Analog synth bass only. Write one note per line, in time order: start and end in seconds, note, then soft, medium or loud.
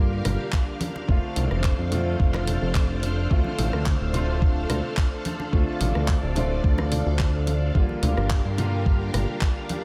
0.00 0.22 G2 loud
0.25 0.38 G1 medium
1.08 1.21 F1 medium
1.36 1.49 C2 loud
1.51 1.74 F1 medium
1.79 2.16 F2 medium
2.20 2.58 F1 medium
2.62 3.27 F1 loud
3.31 3.43 D2 medium
3.58 3.71 A1 loud
3.73 3.96 D2 loud
4.01 4.66 D1 loud
4.70 4.82 D2 medium
5.53 5.65 D2 medium
5.81 5.93 A1 loud
5.95 6.18 D2 loud
6.23 6.61 D1 loud
6.64 7.03 D2 medium
7.06 7.72 D2 loud
7.75 7.87 G1 medium
8.03 8.15 D2 loud
8.17 8.40 G1 loud
8.45 9.10 G2 medium
9.14 9.26 G1 medium